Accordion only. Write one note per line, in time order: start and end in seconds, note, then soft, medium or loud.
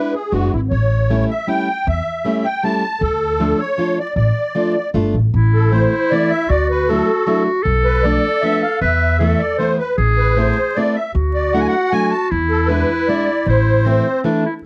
0.00 0.15 B4 medium
0.14 0.33 G#4 medium
0.32 0.52 F#4 medium
0.52 0.61 E4 medium
0.70 1.25 C#5 medium
1.30 1.49 E5 medium
1.48 1.87 G5 medium
1.88 2.46 E5 medium
2.45 2.64 G5 medium
2.64 3.03 A5 loud
3.01 3.61 A4 medium
3.60 3.99 C#5 medium
3.99 4.14 D5 medium
4.16 4.90 D5 medium
5.54 5.71 A4 medium
5.72 6.12 C5 medium
6.10 6.31 D5 medium
6.30 6.50 E5 medium
6.49 6.68 D5 medium
6.70 6.89 B4 medium
6.89 7.43 A4 medium
7.85 8.04 B4 medium
8.03 8.43 D5 medium
8.41 8.62 E5 medium
8.61 8.79 F5 medium
8.81 9.41 E5 medium
9.39 9.57 D5 medium
9.58 9.77 C5 medium
9.78 9.96 B4 medium
10.18 10.38 B4 medium
10.36 10.77 C5 medium
10.75 10.96 D5 medium
10.95 11.13 E5 medium
11.34 11.54 D5 medium
11.53 11.61 F#5 medium
11.60 11.68 G#5 medium
11.68 11.93 F#5 medium
11.92 12.12 G#5 loud
12.11 12.29 A5 medium
12.50 12.70 A4 medium
12.68 13.08 B4 loud
13.07 13.48 D5 medium
13.47 14.21 C5 medium